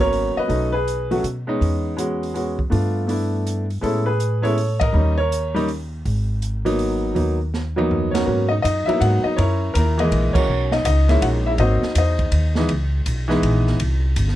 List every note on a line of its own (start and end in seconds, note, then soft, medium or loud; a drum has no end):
0.00 0.31 G#1 medium
0.00 0.45 F#3 medium
0.00 0.46 A#3 medium
0.00 0.46 B3 medium
0.00 0.46 C#4 medium
0.00 0.35 A#4 medium
0.00 0.38 C#5 loud
0.13 open hi-hat soft
0.36 0.71 B4 medium
0.36 0.75 D#5 medium
0.36 muted upright bass stroke soft
0.48 1.19 B1 medium
0.48 0.70 F#3 medium
0.48 0.70 A3 medium
0.48 0.70 C#4 medium
0.48 0.71 D#4 medium
0.48 kick soft
0.48 open hi-hat soft
0.72 1.20 G#4 medium
0.72 1.19 B4 medium
0.88 closed hi-hat medium
1.11 1.22 F#3 medium
1.11 1.22 A3 medium
1.11 1.22 C#4 medium
1.11 1.23 F#4 medium
1.11 open hi-hat soft
1.23 1.58 B2 medium
1.23 closed hi-hat medium
1.47 1.94 G#3 medium
1.47 1.95 B3 medium
1.47 1.95 C#4 medium
1.47 1.95 D#4 medium
1.61 2.68 E2 medium
1.61 kick soft
1.61 open hi-hat soft
1.97 2.33 G#3 medium
1.97 2.33 B3 medium
1.97 2.33 C#4 medium
1.97 2.33 F#4 medium
1.97 closed hi-hat medium
2.23 open hi-hat soft
2.34 2.56 G#3 medium
2.34 2.56 B3 soft
2.34 2.57 C#4 medium
2.34 2.57 F#4 medium
2.34 open hi-hat soft
2.59 kick soft
2.70 3.79 G2 medium
2.70 3.06 A3 medium
2.70 3.06 B3 medium
2.70 3.07 D4 medium
2.70 3.07 F4 medium
2.70 kick soft
2.70 open hi-hat soft
3.07 3.64 A3 medium
3.07 3.64 B3 medium
3.07 3.65 D4 medium
3.07 3.65 E4 medium
3.07 open hi-hat soft
3.47 closed hi-hat medium
3.70 open hi-hat soft
3.81 4.90 A2 medium
3.81 4.03 G#3 medium
3.81 4.04 B3 medium
3.81 4.04 C#4 medium
3.81 4.04 E4 medium
3.81 4.05 A4 medium
3.81 kick soft
3.81 open hi-hat soft
4.06 4.41 G#4 medium
4.06 4.44 B4 medium
4.20 closed hi-hat medium
4.42 4.54 G#3 medium
4.42 4.55 B3 medium
4.42 4.55 C#4 medium
4.42 4.55 E4 medium
4.42 4.78 A4 medium
4.42 4.78 C#5 loud
4.42 open hi-hat soft
4.58 open hi-hat soft
4.80 5.16 A#4 medium
4.80 5.18 D#5 loud
4.80 kick medium
4.80 ride medium
4.93 6.01 D#2 medium
4.93 5.14 G3 medium
4.93 5.15 A#3 medium
4.93 5.15 C#4 medium
4.93 5.16 D#4 medium
5.18 5.65 A#4 medium
5.18 5.64 C#5 loud
5.32 closed hi-hat medium
5.54 5.66 G3 medium
5.54 5.66 A#3 medium
5.54 5.67 C#4 medium
5.54 5.67 D#4 medium
5.54 open hi-hat soft
5.68 open hi-hat soft
6.05 7.12 G#1 medium
6.05 kick soft
6.05 open hi-hat soft
6.42 closed hi-hat medium
6.65 7.13 F#3 medium
6.65 7.13 A#3 medium
6.65 7.13 B3 medium
6.65 7.13 D#4 medium
6.65 open hi-hat soft
6.79 open hi-hat soft
7.15 8.23 D#2 medium
7.15 7.37 F#3 medium
7.15 7.37 A#3 medium
7.15 7.37 B3 medium
7.15 7.37 D#4 medium
7.15 kick soft
7.15 open hi-hat soft
7.54 snare soft
7.76 8.24 F#3 medium
7.76 8.24 A#3 medium
7.76 8.24 B3 medium
7.76 8.25 D#4 medium
7.76 high tom medium
7.91 floor tom medium
8.11 8.26 C#4 medium
8.11 8.48 F#4 medium
8.11 8.48 A#4 medium
8.11 8.50 C#5 medium
8.11 snare medium
8.11 ride medium
8.26 8.62 G#2 medium
8.26 8.48 F#3 medium
8.26 8.48 A#3 medium
8.26 8.48 B3 medium
8.26 8.48 C#4 medium
8.49 8.56 D#4 medium
8.49 8.54 D#5 medium
8.62 8.86 F#2 medium
8.62 8.86 D#4 medium
8.62 8.88 D#5 loud
8.62 kick soft
8.62 hi-hat pedal medium
8.62 ride medium
8.86 9.35 F#3 medium
8.86 9.35 A#3 medium
8.86 9.36 B3 medium
8.86 9.25 D#4 medium
8.86 9.00 E4 medium
8.86 8.99 E5 loud
8.86 muted upright bass stroke soft
8.86 ride soft
9.00 9.23 G#2 medium
9.00 9.24 F#4 medium
9.00 9.23 F#5 loud
9.00 kick soft
9.00 ride medium
9.24 9.37 D#4 medium
9.24 9.38 D#5 medium
9.24 muted upright bass stroke soft
9.37 9.74 F#2 medium
9.37 9.72 C#4 medium
9.37 9.72 E4 medium
9.37 9.72 A#4 medium
9.37 9.71 C#5 loud
9.37 kick soft
9.37 ride medium
9.74 10.11 D#2 loud
9.74 9.98 A#3 medium
9.74 10.31 E4 medium
9.74 10.33 A#4 loud
9.74 kick soft
9.74 hi-hat pedal medium
9.74 ride medium
9.98 10.45 E3 medium
9.98 10.46 G#3 medium
9.98 10.46 A#3 medium
9.98 10.46 D#5 medium
9.98 ride medium
10.11 10.34 A#1 medium
10.11 kick soft
10.11 ride medium
10.33 10.69 C#4 medium
10.33 10.69 F#4 medium
10.33 10.69 A#4 medium
10.33 10.72 C#5 medium
10.33 muted upright bass stroke soft
10.33 kick loud
10.33 crash medium
10.47 10.84 B1 medium
10.72 10.85 D#4 medium
10.72 10.84 D#5 medium
10.72 snare medium
10.85 11.21 C#2 medium
10.85 11.08 D#4 medium
10.85 11.08 D#5 loud
10.85 kick soft
10.85 hi-hat pedal medium
10.85 ride medium
11.08 11.56 G#3 medium
11.08 11.56 A#3 medium
11.08 11.56 C#4 medium
11.08 11.56 D#4 medium
11.08 11.22 E4 medium
11.08 11.23 E5 medium
11.08 snare soft
11.08 ride soft
11.22 11.58 A#1 loud
11.22 11.27 F#4 medium
11.22 11.27 F#5 medium
11.22 kick soft
11.22 ride medium
11.46 11.52 E4 medium
11.46 11.51 E5 medium
11.58 11.81 G#1 medium
11.58 11.81 F#3 medium
11.58 11.81 A#3 medium
11.58 11.81 C4 medium
11.58 11.93 D#4 medium
11.58 11.94 F#4 medium
11.58 11.94 C5 medium
11.58 11.97 D#5 loud
11.58 kick soft
11.58 ride medium
11.83 muted upright bass stroke soft
11.83 snare soft
11.95 12.31 E2 medium
11.95 12.54 D#4 medium
11.95 12.54 C5 medium
11.95 12.54 D#5 medium
11.95 kick soft
11.95 hi-hat pedal medium
11.95 ride medium
12.19 kick medium
12.19 ride soft
12.32 12.68 D#2 medium
12.32 kick soft
12.32 ride medium
12.55 12.68 E3 medium
12.55 12.68 G#3 medium
12.55 12.69 B3 medium
12.55 12.69 D#4 medium
12.55 snare medium
12.69 13.05 C#2 medium
12.69 kick soft
12.69 ride medium
13.06 13.42 B1 medium
13.06 kick soft
13.06 hi-hat pedal medium
13.06 ride medium
13.28 13.76 E3 medium
13.28 13.77 G#3 medium
13.28 13.77 B3 medium
13.28 13.77 D#4 medium
13.28 snare soft
13.42 13.79 A#1 medium
13.42 kick soft
13.42 ride medium
13.67 snare soft
13.80 14.16 C2 medium
13.80 kick soft
13.80 ride medium
14.16 14.36 G1 loud
14.16 kick soft
14.16 hi-hat pedal medium
14.16 ride medium
14.28 snare soft